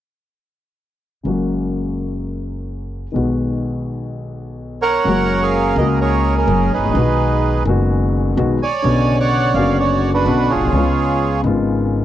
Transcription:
1.23 upright bass F#1, grand piano F#2 C#3 F#3 G#3 A#3
1.27 grand piano F#4
3.12 grand piano B1 B2 D#3 G#3 B3
3.16 upright bass B1, grand piano F#4
4.82 bandoneon A#4 C#5 F#5
5.04 upright bass F#1, grand piano F#2 C#3 F#3 G#3 A#3
5.09 grand piano F#4
5.43 bandoneon G#4 A#4 F5
5.76 upright bass C#2, grand piano C#2 C#3 G#3 A#3 F#4, bandoneon D#5
6.01 bandoneon G#4 A#4 C#5
6.38 bandoneon C#4 A#4
6.47 upright bass F#1, grand piano F#2 C#3 F#3 G#3 A#3 F#4
6.73 bandoneon D#4 G#4 B4
6.77 upright bass G#1, grand piano G#1
6.83 upright bass A1, grand piano A1
6.89 upright bass A#1, grand piano A#1
6.93 upright bass B1, grand piano B1 B2 D#3 G#3 B3
6.98 grand piano F#4
7.65 upright bass F#1, grand piano F#1 F#2 D#3 G#3 B3 F#4
8.37 grand piano B1 B2 D#3 G#3 B3 F#4, upright bass B1
8.62 bandoneon C#5 D5 G#5
8.82 upright bass B1, grand piano B1 B2 C#3 D3 B3 F#4
9.20 bandoneon C#5 D5 F#5
9.54 upright bass F#1, grand piano F#1 F#2 C#3 D3 B3, bandoneon F5
9.58 grand piano F#4
9.80 bandoneon F#4 D5
10.14 bandoneon D4 F#4 B4
10.26 upright bass B1, grand piano B1 B2 D3 B3 C#4 F#4
10.50 bandoneon F4 G#4 C#5
10.55 upright bass A#1, grand piano A#1
10.61 upright bass B1, grand piano B1
10.67 upright bass C2, grand piano C2
10.71 upright bass C#2, grand piano C#2 C#3 G#3 B3
10.76 grand piano F4
11.42 upright bass G#1, grand piano G#1 G#2 C#3 G#3 B3 F4

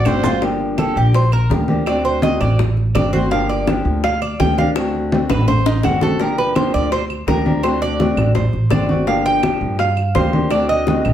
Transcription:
Already playing: cuban tres D5, flute F#5
0.05 upright bass G1, nylon-string guitar D3 A3 C4 F#4, trumpet C5, low bongo, low conga, claves, maracas
0.23 nylon-string guitar A3 C4 F#4, cuban tres F4, low bongo, low conga, maracas
0.41 nylon-string guitar D3 F3 A#3 D4 G4, high bongo, high conga
0.60 high conga
0.78 nylon-string guitar D3 F3 A#3 D4 G4, cuban tres A4, high bongo, high conga, claves
0.96 upright bass A#1, cuban tres G4, high conga
1.14 cuban tres C5, muted nylon-string guitar stroke, high bongo, high conga
1.32 cuban tres A#4, high conga, claves
1.50 upright bass D2, nylon-string guitar F3 A#3 D4 G4, high bongo, low bongo, high conga
1.68 nylon-string guitar F3 A#3 D4 G4, high conga
1.86 nylon-string guitar D3 A3 C4 F#4, cuban tres D5, high bongo, high conga, claves
2.04 cuban tres C5, high conga
2.22 nylon-string guitar D3 A3 C4 F#4, cuban tres D#5, high bongo, high conga
2.41 upright bass A1, cuban tres D5, high bongo, high conga, low conga, claves
2.59 muted nylon-string guitar stroke, high bongo, high conga, low conga
2.77 high bongo, high conga
2.95 upright bass G1, nylon-string guitar D3 A3 C4 F#4, cuban tres D5, high bongo, low bongo, high conga, claves
3.13 nylon-string guitar A3 C4 F#4, cuban tres C5, high bongo, high conga
3.31 nylon-string guitar D3 F3 A#3 D4 G4, cuban tres F5, high bongo
3.49 cuban tres D5, high conga
3.67 nylon-string guitar D3 F3 A#3 D4 G4, high bongo, high conga, claves
3.85 upright bass D2, high conga
4.03 cuban tres F5, muted nylon-string guitar stroke, high bongo, high conga
4.22 cuban tres D5, high conga, claves
4.40 upright bass D2, nylon-string guitar F3 A#3 D4 G4, cuban tres G5, high bongo, low bongo, high conga
4.58 nylon-string guitar F3 A#3 D4 G4, cuban tres F5, high conga
4.76 nylon-string guitar D3 A3 C4 F#4, high bongo, high conga, claves
4.95 high conga
5.12 nylon-string guitar D3 A3 C4 F#4, high conga
5.29 upright bass A1, cuban tres B4, low bongo, high conga, low conga, claves
5.48 cuban tres C5, muted nylon-string guitar stroke, low bongo, high conga, low conga
5.66 cuban tres D#4, low bongo, high conga
5.83 upright bass G1, nylon-string guitar D3 A3 C4 F#4, cuban tres F#4, low bongo, high conga, claves
6.01 nylon-string guitar A3 C4 F#4, cuban tres A4, low bongo, high conga
6.20 nylon-string guitar D3 F3 A#3 D4 G4, cuban tres A#4, high bongo, high conga
6.38 cuban tres B4, high conga
6.55 nylon-string guitar D3 F3 A#3 D4 G4, cuban tres C5, high bongo, high conga, claves
6.74 upright bass D2, cuban tres D5, high conga
6.91 cuban tres C5, muted nylon-string guitar stroke, high bongo, high conga
7.10 high conga, claves
7.27 upright bass D2, nylon-string guitar F3 A#3 D4 G4, cuban tres A#4, high bongo, low bongo, high conga
7.45 nylon-string guitar F3 A#3 D4 G4, high conga
7.63 nylon-string guitar D3 A3 C4 F#4, cuban tres C5, high bongo, high conga, claves
7.82 cuban tres D5, high conga
7.99 nylon-string guitar D3 A3 C4 F#4, high bongo, high conga
8.16 upright bass A1, high bongo, high conga, low conga, claves
8.35 cuban tres C5, muted nylon-string guitar stroke, high bongo, high conga, low conga
8.53 upright bass A1, high bongo, high conga
8.70 upright bass G1, nylon-string guitar D3 A3 C4 F#4, cuban tres D5, high bongo, low bongo, high conga, claves
8.89 nylon-string guitar A3 C4 F#4, high bongo, high conga
9.07 nylon-string guitar D3 F3 A#3 D4 G4, cuban tres F5, high bongo, high conga
9.25 cuban tres G5, high conga
9.42 nylon-string guitar D3 F3 A#3 D4 G4, high bongo, high conga, claves
9.61 upright bass G2, high conga
9.79 cuban tres F5, muted nylon-string guitar stroke, high bongo, high conga
9.97 high conga, claves
10.15 upright bass D2, nylon-string guitar F3 A#3 D4 G4, cuban tres C5, high bongo, low bongo, high conga
10.33 nylon-string guitar F3 A#3 D4 G4, high conga
10.51 nylon-string guitar D3 A3 C4 F#4, cuban tres D5, high bongo, claves
10.69 cuban tres D#5, high conga
10.86 nylon-string guitar D3 A3 C4 F#4, high bongo, high conga
11.05 upright bass A1, high bongo, high conga, low conga, claves

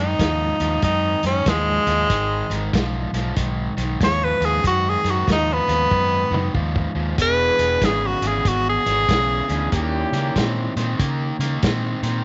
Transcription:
Already playing: fingered electric bass F#2, overdriven electric guitar G#2 D#3
0.00 tenor saxophone D#4
0.19 fingered electric bass D#2, overdriven electric guitar G#2 F3, kick, snare, closed hi-hat
0.60 fingered electric bass D#2, overdriven electric guitar G#2 F3, snare, closed hi-hat
0.82 fingered electric bass F#2, overdriven electric guitar G#2 D#3, tenor saxophone D#4, kick, snare, closed hi-hat
1.23 fingered electric bass F#2, overdriven electric guitar G#2 D#3, tenor saxophone C#4, snare, closed hi-hat
1.46 fingered electric bass D#2, overdriven electric guitar G#2 F3, tenor saxophone G#3, kick, snare, closed hi-hat
1.87 fingered electric bass D#2, overdriven electric guitar G#2 F3, snare, closed hi-hat
2.09 fingered electric bass G#1, overdriven electric guitar G#2 D#3, kick, snare, closed hi-hat
2.50 fingered electric bass G#1, overdriven electric guitar G#2 D#3, snare, closed hi-hat
2.73 fingered electric bass B1, overdriven electric guitar G#2 F3, kick, snare, closed hi-hat
3.13 fingered electric bass B1, overdriven electric guitar G#2 F3, snare, closed hi-hat
3.36 fingered electric bass B1, overdriven electric guitar G#2 D#3, kick, snare, closed hi-hat
3.77 fingered electric bass B1, overdriven electric guitar G#2 D#3, snare, closed hi-hat
4.00 fingered electric bass D#2, overdriven electric guitar G#2 F3, kick, snare, closed hi-hat
4.04 tenor saxophone C#5
4.24 tenor saxophone B4
4.40 fingered electric bass D#2, overdriven electric guitar G#2 F3, snare, closed hi-hat
4.45 tenor saxophone G#4
4.63 fingered electric bass F#2, overdriven electric guitar G#2 D#3, kick, snare, closed hi-hat
4.67 tenor saxophone F#4
4.90 tenor saxophone G#4
5.04 fingered electric bass F#2, overdriven electric guitar G#2 D#3, snare, closed hi-hat
5.11 tenor saxophone F#4
5.27 fingered electric bass D#2, overdriven electric guitar G#2 F3, kick, snare, closed hi-hat
5.32 tenor saxophone D#4
5.53 tenor saxophone B3
5.67 fingered electric bass D#2, overdriven electric guitar G#2 F3, snare, closed hi-hat
5.91 fingered electric bass F#2, overdriven electric guitar G#2 D#3, kick
6.31 fingered electric bass F#2, overdriven electric guitar G#2 D#3, mid tom
6.54 fingered electric bass D#2, overdriven electric guitar G#2 F3, kick
6.76 kick
6.95 fingered electric bass D#2, overdriven electric guitar G#2 F3
7.17 fingered electric bass E1, overdriven electric guitar E2 B2, horn section G#3 D4 E4 G#4, kick, closed hi-hat
7.22 tenor saxophone B4
7.59 fingered electric bass E1, overdriven electric guitar E2 B2, snare, closed hi-hat
7.81 fingered electric bass G#1, overdriven electric guitar E2 C#3, kick, snare, closed hi-hat
7.85 tenor saxophone G#4
8.07 tenor saxophone F#4
8.22 fingered electric bass G#1, overdriven electric guitar E2 C#3, snare, closed hi-hat
8.27 tenor saxophone G#4
8.44 fingered electric bass G#1, overdriven electric guitar E2 B2, tenor saxophone F#4, kick, snare, closed hi-hat
8.69 tenor saxophone G#4
8.86 fingered electric bass G#1, overdriven electric guitar E2 B2, snare, closed hi-hat
9.08 fingered electric bass B1, overdriven electric guitar E2 C#3, kick, snare, closed hi-hat
9.48 fingered electric bass D2, overdriven electric guitar E2 C#3, horn section G#3 D4 E4 G#4, snare, closed hi-hat
9.72 fingered electric bass D#2, overdriven electric guitar D#3 A#3, horn section G3 C#4 E4 G4, kick, closed hi-hat
10.12 fingered electric bass C#3, overdriven electric guitar D#3 A#3, snare, closed hi-hat
10.35 fingered electric bass A#2, overdriven electric guitar D#3 C4, kick, snare, closed hi-hat
10.76 fingered electric bass A#2, overdriven electric guitar D#3 C4, snare, closed hi-hat
10.99 fingered electric bass C#3, overdriven electric guitar D#3 A#3, kick, closed hi-hat
11.39 fingered electric bass C#3, overdriven electric guitar D#3 A#3, snare, closed hi-hat
11.63 fingered electric bass A#2, overdriven electric guitar D#3 C4, kick, snare, closed hi-hat
12.03 fingered electric bass A#2, overdriven electric guitar D#3 C4, snare, closed hi-hat

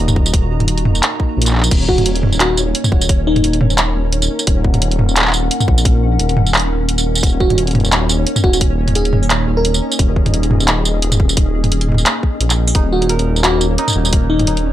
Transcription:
Already playing: ambient pad A#3 D#4 D#5, synth texture F#4 A#5
0.00 detuned saw bass D#1
0.08 mid tom, tambourine
0.16 kick
0.26 tambourine
0.33 detuned saw bass D#1, kick, closed hi-hat
0.60 closed hi-hat, mid tom
0.68 closed hi-hat
0.78 closed hi-hat
0.85 mid tom
0.95 tambourine
1.03 clap, closed hi-hat
1.20 kick
1.37 detuned saw bass A#1
1.42 closed hi-hat
1.46 clap, closed hi-hat, tambourine
1.49 clap
1.51 clap
1.53 clap
1.56 clap
1.58 clap
1.61 clap, tambourine
1.71 detuned saw bass D#1, synth texture C#4 C#5, ambient pad A#4, kick, closed hi-hat, crash
1.89 fm electric piano F#4, kick
1.98 closed hi-hat, mid tom
2.06 closed hi-hat
2.15 closed hi-hat
2.23 mid tom
2.33 tambourine
2.40 fm electric piano F#4, clap, closed hi-hat
2.57 tambourine
2.75 closed hi-hat
2.84 mid tom, tambourine
2.92 detuned saw bass D#1, kick
3.01 tambourine
3.09 kick, closed hi-hat
3.27 fm electric piano D#4
3.36 closed hi-hat, mid tom
3.44 closed hi-hat
3.53 closed hi-hat
3.61 mid tom
3.70 tambourine
3.78 clap, closed hi-hat
3.95 detuned saw bass D#1
4.13 closed hi-hat
4.22 tambourine
4.39 tambourine
4.47 detuned saw bass D#1, synth texture F#5, kick, closed hi-hat
4.64 kick
4.74 closed hi-hat, mid tom
4.82 closed hi-hat
4.91 closed hi-hat
4.99 mid tom
5.09 tambourine
5.16 clap, closed hi-hat
5.19 clap
5.22 clap
5.26 clap
5.28 clap
5.31 clap, tambourine
5.51 closed hi-hat
5.60 mid tom, tambourine
5.68 detuned saw bass A#1, kick
5.78 tambourine
5.85 kick, closed hi-hat
6.19 detuned saw bass D#1, closed hi-hat
6.29 closed hi-hat
6.37 mid tom
6.46 tambourine
6.54 clap, closed hi-hat
6.57 closed hi-hat
6.60 closed hi-hat
6.89 closed hi-hat
6.98 tambourine
7.15 tambourine
7.18 tambourine
7.21 detuned saw bass D#1, synth texture C#5, ambient pad D#5, kick, closed hi-hat, tambourine
7.23 tambourine
7.27 tambourine
7.29 tambourine
7.40 fm electric piano F#4, kick
7.50 closed hi-hat, mid tom
7.58 closed hi-hat
7.67 closed hi-hat
7.71 closed hi-hat
7.75 closed hi-hat, mid tom
7.80 closed hi-hat
7.85 tambourine
7.92 clap, closed hi-hat
8.09 tambourine
8.27 closed hi-hat
8.36 mid tom, tambourine
8.44 detuned saw bass D#1, fm electric piano F#4, kick
8.53 fm electric piano F#4, tambourine
8.61 kick, closed hi-hat
8.88 closed hi-hat, mid tom
8.95 fm electric piano G#4, closed hi-hat
9.05 closed hi-hat
9.13 mid tom
9.23 tambourine
9.30 clap, closed hi-hat
9.47 detuned saw bass D#1
9.57 fm electric piano A#4
9.65 closed hi-hat
9.74 tambourine
9.92 tambourine
9.99 detuned saw bass D#1, synth texture G#4, kick, closed hi-hat
10.16 kick
10.26 closed hi-hat, mid tom
10.34 closed hi-hat
10.43 closed hi-hat
10.51 mid tom
10.60 tambourine
10.68 clap, closed hi-hat
10.85 tambourine
11.02 detuned saw bass D#1, closed hi-hat
11.12 mid tom, tambourine
11.20 kick
11.29 tambourine
11.37 detuned saw bass D#1, kick, closed hi-hat
11.64 closed hi-hat, mid tom
11.72 closed hi-hat
11.81 closed hi-hat
11.89 mid tom
11.92 mid tom
11.95 mid tom, tambourine
12.06 clap, closed hi-hat
12.23 kick
12.40 detuned saw bass A#1, closed hi-hat
12.50 clap, closed hi-hat, tambourine
12.68 tambourine
12.75 detuned saw bass D#1, ambient pad A#3 D#4 A#4, synth texture C#4 C#5, santur D#4, kick, closed hi-hat
12.93 fm electric piano F#4
13.02 closed hi-hat
13.09 santur A#4, closed hi-hat
13.19 closed hi-hat
13.36 tambourine
13.44 santur A#3, fm electric piano F#4, clap, closed hi-hat
13.61 tambourine
13.78 santur D#4, closed hi-hat
13.88 mid tom, tambourine
13.90 tambourine
13.93 detuned saw bass D#1, tambourine
14.05 tambourine
14.13 kick, closed hi-hat
14.30 fm electric piano D#4
14.39 closed hi-hat, mid tom
14.47 santur D#4, closed hi-hat
14.57 closed hi-hat

